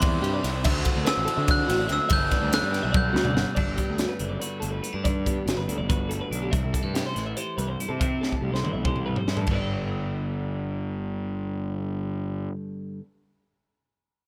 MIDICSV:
0, 0, Header, 1, 7, 480
1, 0, Start_track
1, 0, Key_signature, 1, "major"
1, 0, Tempo, 417827
1, 750, Time_signature, 7, 3, 24, 8
1, 4593, Tempo, 421941
1, 16279, End_track
2, 0, Start_track
2, 0, Title_t, "Glockenspiel"
2, 0, Program_c, 0, 9
2, 0, Note_on_c, 0, 84, 75
2, 516, Note_off_c, 0, 84, 0
2, 1239, Note_on_c, 0, 88, 86
2, 1727, Note_off_c, 0, 88, 0
2, 1733, Note_on_c, 0, 90, 102
2, 2212, Note_on_c, 0, 88, 93
2, 2214, Note_off_c, 0, 90, 0
2, 2424, Note_off_c, 0, 88, 0
2, 2445, Note_on_c, 0, 91, 105
2, 2883, Note_off_c, 0, 91, 0
2, 2917, Note_on_c, 0, 90, 98
2, 3359, Note_off_c, 0, 90, 0
2, 3408, Note_on_c, 0, 91, 89
2, 3902, Note_off_c, 0, 91, 0
2, 16279, End_track
3, 0, Start_track
3, 0, Title_t, "Clean electric guitar"
3, 0, Program_c, 1, 27
3, 29, Note_on_c, 1, 74, 81
3, 258, Note_on_c, 1, 67, 81
3, 270, Note_off_c, 1, 74, 0
3, 384, Note_off_c, 1, 67, 0
3, 388, Note_on_c, 1, 74, 80
3, 497, Note_off_c, 1, 74, 0
3, 497, Note_on_c, 1, 76, 80
3, 729, Note_off_c, 1, 76, 0
3, 743, Note_on_c, 1, 76, 88
3, 976, Note_off_c, 1, 76, 0
3, 976, Note_on_c, 1, 74, 79
3, 1208, Note_on_c, 1, 71, 88
3, 1222, Note_off_c, 1, 74, 0
3, 1434, Note_off_c, 1, 71, 0
3, 1439, Note_on_c, 1, 69, 81
3, 1573, Note_off_c, 1, 69, 0
3, 1573, Note_on_c, 1, 76, 78
3, 1692, Note_off_c, 1, 76, 0
3, 1692, Note_on_c, 1, 74, 77
3, 1929, Note_on_c, 1, 66, 76
3, 1939, Note_off_c, 1, 74, 0
3, 2054, Note_on_c, 1, 74, 82
3, 2058, Note_off_c, 1, 66, 0
3, 2160, Note_off_c, 1, 74, 0
3, 2164, Note_on_c, 1, 76, 77
3, 2384, Note_off_c, 1, 76, 0
3, 2398, Note_on_c, 1, 76, 89
3, 2652, Note_off_c, 1, 76, 0
3, 2658, Note_on_c, 1, 74, 72
3, 2903, Note_off_c, 1, 74, 0
3, 2903, Note_on_c, 1, 71, 82
3, 3129, Note_on_c, 1, 67, 77
3, 3145, Note_off_c, 1, 71, 0
3, 3250, Note_on_c, 1, 76, 74
3, 3258, Note_off_c, 1, 67, 0
3, 3352, Note_off_c, 1, 76, 0
3, 3357, Note_on_c, 1, 74, 78
3, 3594, Note_on_c, 1, 66, 76
3, 3613, Note_off_c, 1, 74, 0
3, 3721, Note_on_c, 1, 74, 81
3, 3731, Note_off_c, 1, 66, 0
3, 3837, Note_off_c, 1, 74, 0
3, 3842, Note_on_c, 1, 78, 76
3, 4075, Note_off_c, 1, 78, 0
3, 4080, Note_on_c, 1, 74, 74
3, 4318, Note_on_c, 1, 67, 68
3, 4336, Note_off_c, 1, 74, 0
3, 4563, Note_off_c, 1, 67, 0
3, 4563, Note_on_c, 1, 66, 76
3, 4692, Note_on_c, 1, 71, 67
3, 4697, Note_off_c, 1, 66, 0
3, 4930, Note_on_c, 1, 74, 66
3, 4941, Note_off_c, 1, 71, 0
3, 5048, Note_off_c, 1, 74, 0
3, 5048, Note_on_c, 1, 71, 71
3, 5276, Note_on_c, 1, 69, 65
3, 5298, Note_off_c, 1, 71, 0
3, 5400, Note_off_c, 1, 69, 0
3, 5400, Note_on_c, 1, 71, 64
3, 5664, Note_off_c, 1, 71, 0
3, 5664, Note_on_c, 1, 67, 66
3, 5781, Note_on_c, 1, 74, 81
3, 5786, Note_off_c, 1, 67, 0
3, 6025, Note_off_c, 1, 74, 0
3, 6035, Note_on_c, 1, 67, 65
3, 6256, Note_off_c, 1, 67, 0
3, 6256, Note_on_c, 1, 66, 84
3, 6382, Note_off_c, 1, 66, 0
3, 6383, Note_on_c, 1, 71, 66
3, 6612, Note_off_c, 1, 71, 0
3, 6617, Note_on_c, 1, 74, 68
3, 6742, Note_off_c, 1, 74, 0
3, 6746, Note_on_c, 1, 71, 70
3, 6978, Note_on_c, 1, 69, 63
3, 6988, Note_off_c, 1, 71, 0
3, 7103, Note_off_c, 1, 69, 0
3, 7109, Note_on_c, 1, 71, 72
3, 7349, Note_off_c, 1, 71, 0
3, 7355, Note_on_c, 1, 67, 71
3, 7455, Note_on_c, 1, 76, 83
3, 7472, Note_off_c, 1, 67, 0
3, 7702, Note_off_c, 1, 76, 0
3, 7716, Note_on_c, 1, 69, 67
3, 7939, Note_off_c, 1, 69, 0
3, 7944, Note_on_c, 1, 67, 79
3, 8067, Note_off_c, 1, 67, 0
3, 8077, Note_on_c, 1, 72, 63
3, 8302, Note_off_c, 1, 72, 0
3, 8307, Note_on_c, 1, 76, 67
3, 8421, Note_off_c, 1, 76, 0
3, 8426, Note_on_c, 1, 72, 69
3, 8660, Note_off_c, 1, 72, 0
3, 8664, Note_on_c, 1, 71, 69
3, 8775, Note_off_c, 1, 71, 0
3, 8775, Note_on_c, 1, 72, 67
3, 9017, Note_on_c, 1, 69, 68
3, 9022, Note_off_c, 1, 72, 0
3, 9142, Note_on_c, 1, 76, 80
3, 9143, Note_off_c, 1, 69, 0
3, 9386, Note_off_c, 1, 76, 0
3, 9387, Note_on_c, 1, 69, 65
3, 9624, Note_off_c, 1, 69, 0
3, 9624, Note_on_c, 1, 67, 80
3, 9747, Note_off_c, 1, 67, 0
3, 9756, Note_on_c, 1, 72, 67
3, 9973, Note_off_c, 1, 72, 0
3, 9978, Note_on_c, 1, 76, 64
3, 10103, Note_off_c, 1, 76, 0
3, 10108, Note_on_c, 1, 72, 67
3, 10343, Note_off_c, 1, 72, 0
3, 10348, Note_on_c, 1, 71, 70
3, 10465, Note_off_c, 1, 71, 0
3, 10465, Note_on_c, 1, 72, 67
3, 10704, Note_on_c, 1, 69, 62
3, 10708, Note_off_c, 1, 72, 0
3, 10827, Note_off_c, 1, 69, 0
3, 10868, Note_on_c, 1, 71, 61
3, 10914, Note_on_c, 1, 74, 61
3, 10958, Note_off_c, 1, 71, 0
3, 10963, Note_on_c, 1, 79, 60
3, 14329, Note_off_c, 1, 74, 0
3, 14377, Note_off_c, 1, 79, 0
3, 16279, End_track
4, 0, Start_track
4, 0, Title_t, "Clean electric guitar"
4, 0, Program_c, 2, 27
4, 4101, Note_on_c, 2, 43, 71
4, 4108, Note_on_c, 2, 62, 61
4, 4346, Note_on_c, 2, 59, 56
4, 4819, Note_on_c, 2, 50, 56
4, 5065, Note_on_c, 2, 66, 53
4, 5293, Note_on_c, 2, 38, 60
4, 5306, Note_off_c, 2, 43, 0
4, 5524, Note_off_c, 2, 59, 0
4, 5533, Note_off_c, 2, 62, 0
4, 5538, Note_on_c, 2, 59, 54
4, 5650, Note_off_c, 2, 59, 0
4, 5650, Note_on_c, 2, 62, 48
4, 5758, Note_off_c, 2, 66, 0
4, 5767, Note_off_c, 2, 62, 0
4, 5777, Note_on_c, 2, 43, 69
4, 5781, Note_off_c, 2, 38, 0
4, 5786, Note_on_c, 2, 62, 54
4, 6029, Note_on_c, 2, 59, 57
4, 6497, Note_off_c, 2, 50, 0
4, 6511, Note_on_c, 2, 50, 62
4, 6746, Note_on_c, 2, 66, 52
4, 6984, Note_off_c, 2, 43, 0
4, 6984, Note_on_c, 2, 38, 58
4, 7214, Note_off_c, 2, 62, 0
4, 7227, Note_on_c, 2, 62, 50
4, 7439, Note_off_c, 2, 66, 0
4, 7440, Note_off_c, 2, 59, 0
4, 7440, Note_off_c, 2, 62, 0
4, 7448, Note_on_c, 2, 48, 77
4, 7462, Note_on_c, 2, 64, 62
4, 7467, Note_off_c, 2, 38, 0
4, 7470, Note_off_c, 2, 50, 0
4, 7700, Note_on_c, 2, 55, 58
4, 7810, Note_off_c, 2, 55, 0
4, 7810, Note_on_c, 2, 57, 49
4, 8176, Note_on_c, 2, 52, 58
4, 8179, Note_off_c, 2, 48, 0
4, 8435, Note_on_c, 2, 67, 51
4, 8655, Note_on_c, 2, 43, 60
4, 8906, Note_off_c, 2, 64, 0
4, 8923, Note_on_c, 2, 64, 51
4, 9114, Note_off_c, 2, 43, 0
4, 9115, Note_off_c, 2, 52, 0
4, 9128, Note_off_c, 2, 64, 0
4, 9141, Note_off_c, 2, 57, 0
4, 9160, Note_on_c, 2, 48, 72
4, 9175, Note_on_c, 2, 64, 60
4, 9403, Note_on_c, 2, 57, 57
4, 9437, Note_off_c, 2, 67, 0
4, 9875, Note_off_c, 2, 48, 0
4, 9875, Note_on_c, 2, 52, 57
4, 10126, Note_on_c, 2, 67, 48
4, 10362, Note_on_c, 2, 43, 62
4, 10589, Note_off_c, 2, 64, 0
4, 10602, Note_on_c, 2, 64, 49
4, 10804, Note_off_c, 2, 52, 0
4, 10807, Note_off_c, 2, 43, 0
4, 10808, Note_off_c, 2, 57, 0
4, 10808, Note_off_c, 2, 64, 0
4, 10809, Note_off_c, 2, 67, 0
4, 10842, Note_on_c, 2, 43, 67
4, 10861, Note_on_c, 2, 50, 62
4, 10888, Note_on_c, 2, 59, 58
4, 10909, Note_on_c, 2, 62, 61
4, 14823, Note_off_c, 2, 43, 0
4, 14842, Note_off_c, 2, 50, 0
4, 14870, Note_off_c, 2, 59, 0
4, 14891, Note_off_c, 2, 62, 0
4, 16279, End_track
5, 0, Start_track
5, 0, Title_t, "Overdriven electric guitar"
5, 0, Program_c, 3, 29
5, 0, Note_on_c, 3, 48, 94
5, 0, Note_on_c, 3, 55, 101
5, 0, Note_on_c, 3, 60, 105
5, 0, Note_on_c, 3, 64, 99
5, 730, Note_off_c, 3, 48, 0
5, 737, Note_on_c, 3, 50, 103
5, 739, Note_off_c, 3, 55, 0
5, 746, Note_off_c, 3, 60, 0
5, 753, Note_off_c, 3, 64, 0
5, 758, Note_on_c, 3, 57, 96
5, 774, Note_on_c, 3, 60, 102
5, 783, Note_on_c, 3, 66, 104
5, 2401, Note_off_c, 3, 50, 0
5, 2408, Note_on_c, 3, 43, 93
5, 2414, Note_on_c, 3, 50, 87
5, 2417, Note_off_c, 3, 57, 0
5, 2424, Note_off_c, 3, 60, 0
5, 2427, Note_on_c, 3, 55, 90
5, 2433, Note_on_c, 3, 59, 107
5, 2442, Note_off_c, 3, 66, 0
5, 2450, Note_on_c, 3, 62, 102
5, 4085, Note_off_c, 3, 43, 0
5, 4089, Note_off_c, 3, 50, 0
5, 4095, Note_off_c, 3, 55, 0
5, 4098, Note_off_c, 3, 59, 0
5, 4107, Note_off_c, 3, 62, 0
5, 16279, End_track
6, 0, Start_track
6, 0, Title_t, "Picked electric bass"
6, 0, Program_c, 4, 34
6, 0, Note_on_c, 4, 40, 105
6, 194, Note_off_c, 4, 40, 0
6, 251, Note_on_c, 4, 43, 101
6, 449, Note_off_c, 4, 43, 0
6, 505, Note_on_c, 4, 36, 90
6, 756, Note_off_c, 4, 36, 0
6, 756, Note_on_c, 4, 38, 102
6, 943, Note_off_c, 4, 38, 0
6, 1111, Note_on_c, 4, 38, 90
6, 1205, Note_off_c, 4, 38, 0
6, 1349, Note_on_c, 4, 33, 82
6, 1444, Note_off_c, 4, 33, 0
6, 1581, Note_on_c, 4, 50, 88
6, 1868, Note_off_c, 4, 50, 0
6, 1943, Note_on_c, 4, 33, 111
6, 2134, Note_off_c, 4, 33, 0
6, 2178, Note_on_c, 4, 38, 80
6, 2276, Note_off_c, 4, 38, 0
6, 2419, Note_on_c, 4, 31, 106
6, 2612, Note_off_c, 4, 31, 0
6, 2775, Note_on_c, 4, 38, 90
6, 2970, Note_off_c, 4, 38, 0
6, 3022, Note_on_c, 4, 43, 87
6, 3214, Note_off_c, 4, 43, 0
6, 3260, Note_on_c, 4, 35, 99
6, 3548, Note_off_c, 4, 35, 0
6, 3609, Note_on_c, 4, 38, 104
6, 3807, Note_off_c, 4, 38, 0
6, 3845, Note_on_c, 4, 31, 84
6, 3950, Note_off_c, 4, 31, 0
6, 4096, Note_on_c, 4, 31, 83
6, 4197, Note_off_c, 4, 31, 0
6, 4212, Note_on_c, 4, 31, 78
6, 4314, Note_off_c, 4, 31, 0
6, 4465, Note_on_c, 4, 38, 75
6, 4658, Note_off_c, 4, 38, 0
6, 4826, Note_on_c, 4, 30, 75
6, 5017, Note_off_c, 4, 30, 0
6, 5308, Note_on_c, 4, 31, 83
6, 5499, Note_off_c, 4, 31, 0
6, 5666, Note_on_c, 4, 43, 78
6, 6142, Note_off_c, 4, 43, 0
6, 6263, Note_on_c, 4, 31, 80
6, 6360, Note_off_c, 4, 31, 0
6, 6389, Note_on_c, 4, 31, 77
6, 6484, Note_off_c, 4, 31, 0
6, 6514, Note_on_c, 4, 38, 79
6, 6629, Note_on_c, 4, 31, 92
6, 6646, Note_off_c, 4, 38, 0
6, 7104, Note_off_c, 4, 31, 0
6, 7225, Note_on_c, 4, 35, 90
6, 7416, Note_off_c, 4, 35, 0
6, 7471, Note_on_c, 4, 36, 92
6, 7565, Note_off_c, 4, 36, 0
6, 7604, Note_on_c, 4, 36, 75
6, 7693, Note_off_c, 4, 36, 0
6, 7823, Note_on_c, 4, 43, 85
6, 8015, Note_off_c, 4, 43, 0
6, 8194, Note_on_c, 4, 33, 75
6, 8382, Note_off_c, 4, 33, 0
6, 8668, Note_on_c, 4, 36, 83
6, 8858, Note_off_c, 4, 36, 0
6, 9025, Note_on_c, 4, 48, 78
6, 9501, Note_off_c, 4, 48, 0
6, 9625, Note_on_c, 4, 36, 78
6, 9722, Note_off_c, 4, 36, 0
6, 9741, Note_on_c, 4, 36, 74
6, 9840, Note_off_c, 4, 36, 0
6, 9867, Note_on_c, 4, 43, 70
6, 9986, Note_on_c, 4, 36, 85
6, 10003, Note_off_c, 4, 43, 0
6, 10462, Note_off_c, 4, 36, 0
6, 10593, Note_on_c, 4, 43, 77
6, 10782, Note_off_c, 4, 43, 0
6, 10825, Note_on_c, 4, 31, 80
6, 14240, Note_off_c, 4, 31, 0
6, 16279, End_track
7, 0, Start_track
7, 0, Title_t, "Drums"
7, 19, Note_on_c, 9, 51, 107
7, 30, Note_on_c, 9, 36, 121
7, 134, Note_off_c, 9, 51, 0
7, 145, Note_off_c, 9, 36, 0
7, 273, Note_on_c, 9, 51, 76
7, 388, Note_off_c, 9, 51, 0
7, 509, Note_on_c, 9, 51, 79
7, 521, Note_on_c, 9, 38, 37
7, 624, Note_off_c, 9, 51, 0
7, 635, Note_off_c, 9, 38, 0
7, 738, Note_on_c, 9, 49, 111
7, 749, Note_on_c, 9, 36, 111
7, 853, Note_off_c, 9, 49, 0
7, 864, Note_off_c, 9, 36, 0
7, 976, Note_on_c, 9, 51, 77
7, 986, Note_on_c, 9, 36, 83
7, 1091, Note_off_c, 9, 51, 0
7, 1101, Note_off_c, 9, 36, 0
7, 1222, Note_on_c, 9, 51, 105
7, 1234, Note_on_c, 9, 38, 118
7, 1337, Note_off_c, 9, 51, 0
7, 1349, Note_off_c, 9, 38, 0
7, 1468, Note_on_c, 9, 51, 82
7, 1582, Note_off_c, 9, 51, 0
7, 1699, Note_on_c, 9, 51, 110
7, 1704, Note_on_c, 9, 36, 120
7, 1814, Note_off_c, 9, 51, 0
7, 1819, Note_off_c, 9, 36, 0
7, 1949, Note_on_c, 9, 51, 85
7, 1960, Note_on_c, 9, 38, 37
7, 2064, Note_off_c, 9, 51, 0
7, 2075, Note_off_c, 9, 38, 0
7, 2172, Note_on_c, 9, 51, 79
7, 2183, Note_on_c, 9, 38, 38
7, 2287, Note_off_c, 9, 51, 0
7, 2298, Note_off_c, 9, 38, 0
7, 2408, Note_on_c, 9, 51, 112
7, 2420, Note_on_c, 9, 36, 115
7, 2522, Note_off_c, 9, 51, 0
7, 2535, Note_off_c, 9, 36, 0
7, 2658, Note_on_c, 9, 51, 85
7, 2661, Note_on_c, 9, 36, 77
7, 2669, Note_on_c, 9, 38, 35
7, 2772, Note_off_c, 9, 51, 0
7, 2776, Note_off_c, 9, 36, 0
7, 2784, Note_off_c, 9, 38, 0
7, 2902, Note_on_c, 9, 51, 106
7, 2914, Note_on_c, 9, 38, 115
7, 3017, Note_off_c, 9, 51, 0
7, 3029, Note_off_c, 9, 38, 0
7, 3150, Note_on_c, 9, 51, 83
7, 3161, Note_on_c, 9, 38, 35
7, 3265, Note_off_c, 9, 51, 0
7, 3276, Note_off_c, 9, 38, 0
7, 3382, Note_on_c, 9, 36, 121
7, 3382, Note_on_c, 9, 48, 70
7, 3497, Note_off_c, 9, 36, 0
7, 3497, Note_off_c, 9, 48, 0
7, 3632, Note_on_c, 9, 38, 83
7, 3732, Note_on_c, 9, 45, 83
7, 3747, Note_off_c, 9, 38, 0
7, 3847, Note_off_c, 9, 45, 0
7, 3869, Note_on_c, 9, 38, 99
7, 3984, Note_off_c, 9, 38, 0
7, 4092, Note_on_c, 9, 49, 80
7, 4102, Note_on_c, 9, 36, 94
7, 4207, Note_off_c, 9, 49, 0
7, 4217, Note_off_c, 9, 36, 0
7, 4339, Note_on_c, 9, 42, 58
7, 4344, Note_on_c, 9, 36, 64
7, 4454, Note_off_c, 9, 42, 0
7, 4459, Note_off_c, 9, 36, 0
7, 4576, Note_on_c, 9, 42, 72
7, 4588, Note_on_c, 9, 38, 98
7, 4690, Note_off_c, 9, 42, 0
7, 4701, Note_off_c, 9, 38, 0
7, 4816, Note_on_c, 9, 42, 54
7, 4930, Note_off_c, 9, 42, 0
7, 5068, Note_on_c, 9, 42, 82
7, 5182, Note_off_c, 9, 42, 0
7, 5301, Note_on_c, 9, 42, 57
7, 5415, Note_off_c, 9, 42, 0
7, 5548, Note_on_c, 9, 42, 60
7, 5662, Note_off_c, 9, 42, 0
7, 5790, Note_on_c, 9, 42, 78
7, 5792, Note_on_c, 9, 36, 94
7, 5904, Note_off_c, 9, 42, 0
7, 5906, Note_off_c, 9, 36, 0
7, 6033, Note_on_c, 9, 36, 69
7, 6038, Note_on_c, 9, 42, 60
7, 6147, Note_off_c, 9, 36, 0
7, 6152, Note_off_c, 9, 42, 0
7, 6275, Note_on_c, 9, 42, 78
7, 6286, Note_on_c, 9, 38, 98
7, 6388, Note_off_c, 9, 42, 0
7, 6400, Note_off_c, 9, 38, 0
7, 6518, Note_on_c, 9, 42, 56
7, 6632, Note_off_c, 9, 42, 0
7, 6754, Note_on_c, 9, 36, 109
7, 6757, Note_on_c, 9, 42, 85
7, 6867, Note_off_c, 9, 36, 0
7, 6870, Note_off_c, 9, 42, 0
7, 6993, Note_on_c, 9, 42, 53
7, 7107, Note_off_c, 9, 42, 0
7, 7241, Note_on_c, 9, 42, 57
7, 7354, Note_off_c, 9, 42, 0
7, 7471, Note_on_c, 9, 36, 99
7, 7474, Note_on_c, 9, 42, 75
7, 7585, Note_off_c, 9, 36, 0
7, 7588, Note_off_c, 9, 42, 0
7, 7712, Note_on_c, 9, 36, 65
7, 7717, Note_on_c, 9, 42, 58
7, 7826, Note_off_c, 9, 36, 0
7, 7830, Note_off_c, 9, 42, 0
7, 7955, Note_on_c, 9, 42, 74
7, 7966, Note_on_c, 9, 38, 102
7, 8068, Note_off_c, 9, 42, 0
7, 8080, Note_off_c, 9, 38, 0
7, 8192, Note_on_c, 9, 42, 55
7, 8203, Note_on_c, 9, 38, 31
7, 8305, Note_off_c, 9, 42, 0
7, 8317, Note_off_c, 9, 38, 0
7, 8426, Note_on_c, 9, 42, 77
7, 8540, Note_off_c, 9, 42, 0
7, 8673, Note_on_c, 9, 42, 54
7, 8786, Note_off_c, 9, 42, 0
7, 8921, Note_on_c, 9, 42, 53
7, 9035, Note_off_c, 9, 42, 0
7, 9155, Note_on_c, 9, 36, 102
7, 9156, Note_on_c, 9, 42, 76
7, 9269, Note_off_c, 9, 36, 0
7, 9269, Note_off_c, 9, 42, 0
7, 9411, Note_on_c, 9, 38, 54
7, 9515, Note_on_c, 9, 36, 47
7, 9525, Note_off_c, 9, 38, 0
7, 9629, Note_off_c, 9, 36, 0
7, 9772, Note_on_c, 9, 38, 52
7, 9882, Note_on_c, 9, 47, 60
7, 9885, Note_off_c, 9, 38, 0
7, 9995, Note_off_c, 9, 47, 0
7, 10111, Note_on_c, 9, 45, 73
7, 10113, Note_on_c, 9, 36, 103
7, 10225, Note_off_c, 9, 45, 0
7, 10227, Note_off_c, 9, 36, 0
7, 10234, Note_on_c, 9, 45, 62
7, 10348, Note_off_c, 9, 45, 0
7, 10468, Note_on_c, 9, 43, 66
7, 10582, Note_off_c, 9, 43, 0
7, 10600, Note_on_c, 9, 38, 78
7, 10702, Note_on_c, 9, 43, 84
7, 10714, Note_off_c, 9, 38, 0
7, 10813, Note_on_c, 9, 49, 77
7, 10816, Note_off_c, 9, 43, 0
7, 10824, Note_on_c, 9, 36, 95
7, 10926, Note_off_c, 9, 49, 0
7, 10938, Note_off_c, 9, 36, 0
7, 16279, End_track
0, 0, End_of_file